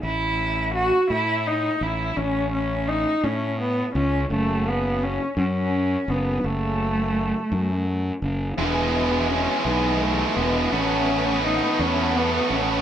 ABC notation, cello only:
X:1
M:6/8
L:1/8
Q:3/8=56
K:Alyd
V:1 name="Cello"
E2 F E D E | C C D C B, C | A, B, C C2 B, | A,4 z2 |
B,2 C B, A, B, | C2 D C B, C |]